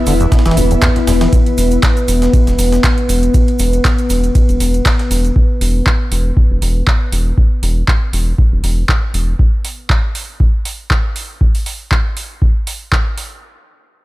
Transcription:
Already playing: B3 E4 B4 E5 B5
0.06 E1 D3, open hi-hat, ride, cabasa
0.20 E2, closed hi-hat, cabasa
0.32 B2, kick, snare, closed hi-hat, ride, cabasa
0.39 snare, ride
0.45 E1 E3, snare, closed hi-hat, ride, cabasa
0.51 snare, ride
0.57 E1, open hi-hat, ride, cabasa
0.71 E2, closed hi-hat, cabasa
0.82 E2, kick, snare, clap, closed hi-hat, ride, cabasa
0.96 E1, snare, closed hi-hat
1.07 E1 E2, snare, open hi-hat, ride, cabasa
1.21 E3, snare, closed hi-hat, ride, cabasa
1.33 kick, closed hi-hat, ride, cabasa
1.46 closed hi-hat, ride
1.58 E1, open hi-hat, ride, cabasa
1.71 closed hi-hat, cabasa
1.83 kick, snare, clap, closed hi-hat, ride, cabasa
1.97 closed hi-hat, cabasa
2.08 E1, open hi-hat, ride, cabasa
2.22 snare, closed hi-hat, cabasa
2.33 kick, closed hi-hat, ride, cabasa
2.47 E1, snare, closed hi-hat, cabasa
2.59 E1, open hi-hat, ride, cabasa
2.72 snare, closed hi-hat, cabasa
2.84 kick, snare, clap, closed hi-hat, ride, cabasa
2.98 closed hi-hat
3.09 E1, open hi-hat, ride, cabasa
3.23 closed hi-hat, cabasa
3.34 kick, closed hi-hat, ride, cabasa
3.48 closed hi-hat, ride
3.59 E1, open hi-hat, ride, cabasa
3.73 closed hi-hat, cabasa
3.85 kick, snare, clap, closed hi-hat, ride, cabasa
3.98 closed hi-hat, ride, cabasa
4.10 E1, open hi-hat, ride, cabasa
4.24 closed hi-hat, cabasa
4.35 kick, closed hi-hat, ride, cabasa
4.49 E1, closed hi-hat, ride, cabasa
4.60 E1, open hi-hat, ride, cabasa
4.74 closed hi-hat, cabasa
4.85 kick, snare, clap, closed hi-hat, ride, cabasa
4.99 snare, closed hi-hat
5.11 E1, open hi-hat, ride, cabasa
5.25 closed hi-hat, cabasa
5.36 kick
5.61 E1, open hi-hat
5.86 kick, clap
6.12 E1, open hi-hat
6.37 kick
6.51 E1
6.62 E1, open hi-hat
6.87 kick, clap
7.12 E1, open hi-hat
7.38 kick
7.63 E1, open hi-hat
7.88 kick, clap
8.13 E1, open hi-hat
8.38 kick
8.52 E1
8.64 E1, open hi-hat
8.89 kick, clap
9.14 E1, open hi-hat
9.39 kick
9.65 open hi-hat
9.90 kick, clap
10.15 open hi-hat
10.40 kick
10.65 open hi-hat
10.91 kick, clap
11.16 open hi-hat
11.41 kick
11.55 open hi-hat
11.66 open hi-hat
11.91 kick, clap
12.17 open hi-hat
12.42 kick
12.67 open hi-hat
12.92 kick, clap
13.18 open hi-hat

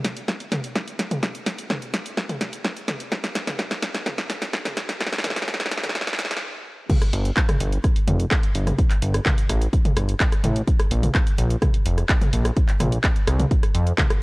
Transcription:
0.05 snare, open hi-hat
0.17 closed hi-hat
0.28 kick, snare, closed hi-hat
0.40 open hi-hat
0.52 snare, open hi-hat, mid tom
0.64 closed hi-hat
0.75 kick, snare, closed hi-hat
0.88 closed hi-hat
0.99 snare, open hi-hat
1.11 closed hi-hat, mid tom
1.23 kick, snare, closed hi-hat
1.35 closed hi-hat
1.46 snare, open hi-hat
1.58 closed hi-hat
1.70 kick, snare, closed hi-hat, mid tom
1.82 closed hi-hat
1.94 snare, open hi-hat
2.06 closed hi-hat
2.17 kick, snare, closed hi-hat
2.29 open hi-hat, mid tom
2.41 snare, open hi-hat
2.53 closed hi-hat
2.64 kick, snare, closed hi-hat
2.77 closed hi-hat
2.88 snare, open hi-hat, mid tom
3.00 closed hi-hat
3.12 kick, snare, closed hi-hat
3.24 snare, closed hi-hat
3.35 snare, open hi-hat
3.47 snare, closed hi-hat, mid tom
3.59 kick, snare, closed hi-hat
3.71 snare, closed hi-hat
3.83 snare, open hi-hat
3.95 snare, closed hi-hat
4.06 kick, snare, closed hi-hat, mid tom
4.18 snare, open hi-hat
4.30 snare, open hi-hat
4.42 snare, closed hi-hat
4.53 kick, snare, closed hi-hat
4.65 snare, closed hi-hat, mid tom
4.77 snare, open hi-hat
4.89 snare, closed hi-hat
5.01 kick, snare, closed hi-hat
5.07 snare
5.13 snare, closed hi-hat
5.18 snare
5.24 snare, open hi-hat, mid tom
5.30 snare
5.36 snare, closed hi-hat
5.42 snare
5.48 kick, snare, closed hi-hat
5.54 snare
5.60 snare, closed hi-hat
5.66 snare
5.71 snare, open hi-hat
5.78 snare
5.84 snare, closed hi-hat, mid tom
5.89 snare
5.95 kick, snare, closed hi-hat
6.01 snare
6.07 snare, open hi-hat
6.13 snare
6.19 snare, open hi-hat
6.25 snare
6.31 snare, closed hi-hat
6.37 snare
6.90 kick, closed hi-hat, mid tom, crash
7.02 cross-stick, closed hi-hat
7.13 G1, open hi-hat
7.25 closed hi-hat
7.37 kick, clap, closed hi-hat
7.49 cross-stick, closed hi-hat, mid tom
7.60 G1, open hi-hat
7.72 closed hi-hat
7.84 kick, cross-stick, closed hi-hat
7.96 open hi-hat
8.08 F1, open hi-hat, mid tom
8.20 closed hi-hat
8.31 kick, cross-stick, clap, closed hi-hat
8.43 closed hi-hat
8.55 G1, open hi-hat
8.67 cross-stick, closed hi-hat, mid tom
8.79 kick, closed hi-hat
8.91 clap, closed hi-hat
9.02 G1, open hi-hat
9.14 cross-stick, closed hi-hat
9.26 kick, clap, closed hi-hat, mid tom
9.38 closed hi-hat
9.49 A1, cross-stick, open hi-hat
9.62 closed hi-hat
9.73 kick, closed hi-hat
9.85 open hi-hat, mid tom
9.97 G1, cross-stick, open hi-hat
10.09 closed hi-hat
10.20 kick, clap, closed hi-hat
10.32 cross-stick, closed hi-hat
10.44 A1, open hi-hat, mid tom
10.56 closed hi-hat
10.68 kick, closed hi-hat
10.80 cross-stick, closed hi-hat
10.91 A#1, open hi-hat
11.03 closed hi-hat, mid tom
11.15 kick, cross-stick, clap, closed hi-hat
11.27 closed hi-hat
11.38 A#1, open hi-hat
11.50 closed hi-hat
11.62 kick, cross-stick, closed hi-hat, mid tom
11.74 open hi-hat
11.86 F1, open hi-hat
11.98 cross-stick, closed hi-hat
12.09 kick, clap, closed hi-hat
12.21 closed hi-hat, mid tom
12.33 A#1, open hi-hat
12.45 cross-stick, closed hi-hat
12.56 kick, closed hi-hat
12.69 clap, closed hi-hat
12.80 A#1, cross-stick, open hi-hat, mid tom
12.92 closed hi-hat
13.04 kick, clap, closed hi-hat
13.16 closed hi-hat
13.27 C2, cross-stick, open hi-hat
13.39 closed hi-hat, mid tom
13.51 kick, closed hi-hat
13.63 cross-stick, open hi-hat
13.75 F2, open hi-hat
13.87 closed hi-hat
13.98 kick, clap, closed hi-hat, mid tom
14.10 cross-stick, closed hi-hat

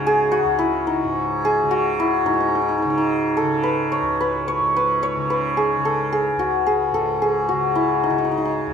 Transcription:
Already playing: C#2 G#2 C#3 D#4 F#4
0.07 G#4
0.32 F#4
0.44 C#2
0.59 E4
0.87 D#4
1.04 G#2
1.45 G#4
1.63 C#3
1.71 F#4
2.00 E4
2.25 G#2 D#4
2.34 D#4
2.40 D#4
2.48 D#4
2.55 D#4
2.62 D#4
2.69 D#4
2.78 D#4
2.82 C#3 D#4
2.90 D#4
2.98 D#4
3.37 A4
3.43 C#3
3.63 B4
3.92 C#5
4.01 C#2
4.21 B4
4.48 C#5
4.60 G#2
4.76 B4
5.03 C#5
5.16 C#3
5.30 B4
5.57 G#4
5.76 C#3
5.85 A4
6.12 G#4
6.36 C#2 F#4
6.67 G#4
6.92 G#2 A4
7.22 G#4
7.49 C#3 F#4
7.75 E4
8.04 D#4
8.10 C#3 D#4
8.18 D#4
8.25 D#4
8.32 D#4
8.38 D#4
8.45 D#4
8.67 C#2

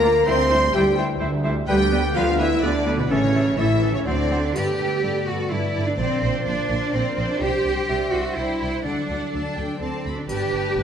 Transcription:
Already playing: D2 D3 F3 A#3 D4 F4 A#4 D5 F5 A#5
0.03 A#3 F4 D5 F5
0.11 D4
0.26 D2 D3 E3 G3 C4 E4 C5 E5 C6
0.50 G3 E4 C5 E5
0.73 D2 G3 E4 G4 C5 E5 G5
0.91 G4
0.97 G3 E4 C5 E5
1.06 C5
1.20 D2 G3 E4 C5 E5
1.38 G4
1.44 G3 E4 C5 E5
1.53 C4
1.68 D2 D3 G3 B3 G4 B4 D5 G5
1.85 B3
1.92 G3 B3 B4 D5
2.00 D4
2.15 D2 F3 G3 B3 F4 B4 D5 F5
2.32 B4
2.39 E3 G3 B3 E4 B4 D5 E5
2.47 D5
2.63 D2 D3 G3 B3 D4 B4 D5 G5
2.79 B4
2.86 G3 B3 B4 D5
2.98 B2 B3 B4
3.08 A1 A2 C#3 E3 A3 C#4 A4 C#5 E5
3.26 E3
3.34 E3 A3 A4 E5
3.57 A1 E3 A3 E4 A4 E5
3.74 A4
3.82 E3 A3 A4 E5
3.94 C#3 C#4 C#5
4.06 D2 D3 F#3 C4 D4 C5 D5 F#5
4.23 A3
4.30 F#3 C4 C5 F#5
4.39 F#4 C5
4.44 D4
4.56 G2 A3 B3 G4 A4 B4 D5, triangle
4.72 D3
4.78 G2 A4 B4 D5
4.87 A3
5.02 G2 D4 A4 B4 D5
5.19 B4
5.27 G2 F#4 A4 B4 D5
5.35 A4
5.50 G2 E4 A4 B4 D5
5.66 A4
5.73 G2 A4 B4 D5
5.83 B4
5.87 D4
5.97 A#1 A#2 F3 C4 D4 C5 D5
6.14 F3
6.21 A#1 C5 D5
6.30 A#3
6.45 A#1 D4 C5 D5
6.61 C5
6.69 A#1 C5 D5
6.77 A#4
6.93 A#1 C4 C5 D5
7.08 A#4
7.17 A#1 C5 D5
7.25 C5
7.30 D4
7.41 C2 C3 G3 G4 C5 D5 G5
7.57 C4
7.65 C2 C5 D5 G5
7.72 G3
7.88 C2 D4 C5 D5 E5 G5
8.04 C5
8.12 C2 F#4 C5 D5 G5
8.36 C2 E4 C5 D5 G5
8.60 C2 C5 D5 G5
8.68 C5
8.84 D2 D3 F#3 D4 A4 D5 F#5
9.01 F#3
9.08 D2 A4 D5 F#5
9.16 D4
9.32 D2 A4 D5 A5
9.48 F#4
9.57 D2 A4 D5 G5
9.65 D5
9.80 D2 C4 A4 D5 A5
9.97 D5
10.05 D2 A4 D5 B5
10.14 D4 F#4
10.29 G1 G2 A3 G4 B4 D5 A5, triangle
10.45 D3
10.52 G1 B4 D5 A5
10.62 B3
10.76 G1 D4 B4 D5 A5

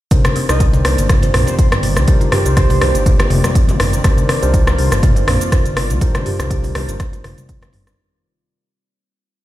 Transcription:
0.11 C2 C3 D#3 A#3 C4 D4 D#4 G4 A#4 C5 D5, kick, closed hi-hat, muted conga, shaker
0.25 cross-stick, closed hi-hat, high conga, shaker
0.36 C4, open hi-hat, muted conga
0.49 C2 D4 D#4 G4 A#4 C5 D#5, cross-stick, closed hi-hat, shaker
0.60 kick, closed hi-hat, shaker
0.73 muted conga, high conga, shaker
0.85 C2 D4 D#4 G4 A#4 C5, cross-stick, open hi-hat
0.98 G1, closed hi-hat, muted conga, shaker
1.09 F4, kick, cross-stick, closed hi-hat, mid tom, high conga, shaker
1.23 C5, closed hi-hat, muted conga, shaker
1.34 A#1 C4, cross-stick, mid tom, open hi-hat
1.47 C5, closed hi-hat, muted conga, shaker
1.59 C5, kick, closed hi-hat, shaker
1.72 G1, cross-stick, closed hi-hat, shaker
1.83 open hi-hat, muted conga
1.96 C2, cross-stick, closed hi-hat, high conga, shaker
2.08 G3 D4 D#4 G4 A#4 C5, kick, closed hi-hat, muted conga, shaker
2.21 F4, closed hi-hat, high conga, shaker
2.32 G4, cross-stick, mid tom, open hi-hat, muted conga
2.46 C2 C4 D4 D#4 G4 A#4 C5, closed hi-hat, shaker
2.57 G4, kick, cross-stick, closed hi-hat, shaker
2.70 open hi-hat, muted conga, high conga, shaker
2.81 C2 D4 D#4 G4 A#4 C5, cross-stick, open hi-hat, low conga
2.95 G1, closed hi-hat, muted conga, shaker
3.06 C4, kick, closed hi-hat, high conga, shaker
3.19 F4, cross-stick, closed hi-hat, muted conga, shaker
3.30 G1, mid tom, open hi-hat, high conga
3.44 G3, cross-stick, closed hi-hat, muted conga, high conga, shaker
3.55 C4, kick, closed hi-hat, shaker
3.69 C4, closed hi-hat, high conga, low conga, shaker
3.80 G1 D#4, cross-stick, mid tom, open hi-hat, muted conga
3.93 closed hi-hat, shaker
4.04 C2 C4 D4 D#4 F4 G4 A#4 C5, kick, cross-stick, closed hi-hat, muted conga, shaker
4.17 closed hi-hat, high conga, shaker
4.29 C4, cross-stick, open hi-hat, muted conga
4.42 C2 D4 D#4 G4 A#4 C5, closed hi-hat, shaker
4.54 kick, closed hi-hat, shaker
4.67 cross-stick, muted conga, high conga, shaker
4.78 C2 D4 D#4 G4 A#4 C5, open hi-hat
4.92 G1, cross-stick, closed hi-hat, muted conga, shaker
5.03 F4, kick, closed hi-hat, mid tom, high conga, shaker
5.16 C5, closed hi-hat, muted conga, shaker
5.27 A#1 C4, cross-stick, mid tom, open hi-hat
5.41 closed hi-hat, muted conga, shaker
5.52 C5, kick, cross-stick, closed hi-hat, shaker
5.66 G1, closed hi-hat, shaker
5.77 cross-stick, open hi-hat, muted conga
5.90 C2, closed hi-hat, high conga, shaker
6.01 G3 D4 D#4 G4 A#4 C5, kick, closed hi-hat, muted conga, shaker
6.15 F4, cross-stick, closed hi-hat, high conga, shaker
6.26 G4, mid tom, open hi-hat, muted conga
6.39 C2 C4 D4 D#4 G4 A#4 C5, cross-stick, closed hi-hat, shaker
6.50 G4, kick, closed hi-hat, shaker
6.64 open hi-hat, muted conga, high conga, shaker
6.75 C2 D4 D#4 G4 A#4 C5, cross-stick, open hi-hat, low conga
6.89 G1, closed hi-hat, muted conga, shaker
6.99 C4, kick, cross-stick, closed hi-hat, high conga, shaker
7.13 F4, closed hi-hat, muted conga, shaker
7.24 G1, cross-stick, mid tom, open hi-hat, high conga
7.38 G3, closed hi-hat, muted conga, high conga, shaker
7.49 C4, kick, closed hi-hat, shaker
7.62 C4, cross-stick, closed hi-hat, high conga, low conga, shaker
7.73 G1 D#4, mid tom, open hi-hat, muted conga
7.87 cross-stick, closed hi-hat, shaker

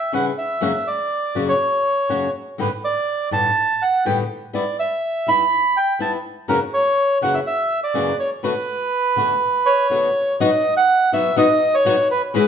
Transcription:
Already playing: E5
0.13 C#3 E3 G3 C#4 E4 F#5
0.38 E5
0.61 F#2 C#3 F#3 A#3 C#4 F#4
0.87 D5
1.35 F#2 C#3 F#3 A#3 C#4 F#4
1.48 C#5
2.09 F#2 C#3 F#3 A#3 C#4 F#4
2.58 G2 A2 D3 G3 B3 G4 B4
2.84 D5
3.31 G2 A2 D3 G3 B3 G4 A5
3.82 F#5
4.05 G2 A2 D3 G3 B3 G4 G5
4.53 G3 B3 E4 D5
4.79 E5
5.27 G3 B3 E4 B5
5.77 G5
5.99 G3 B3 E4 A5
6.48 F#2 C#3 E3 A#3 C#4 F#4 A#4
6.74 C#5
7.21 F#2 C#3 E3 A#3 C#4 F#4 F#5
7.35 E5
7.47 E5
7.84 D5
7.94 F#2 C#3 E3 A#3 C#4 F#4
8.19 C#5
8.43 B2 D3 A3 B3 F#4 B4
9.16 B2 D3 A3 B3 F#4
9.66 C#5
9.90 B2 D3 A3 B3 F#4
10.40 B2 F#3 B3 D#4 F#4 D#5
10.77 F#5
11.12 B2 F#3 B3 D#4 F#4 E5
11.36 B2 F#3 B3 D#4 F#4 D#5
11.74 C#5
11.85 B2 F#3 B3 D#4 F#4
12.11 B4
12.34 B2 E3 G#3 B3 E4 B4

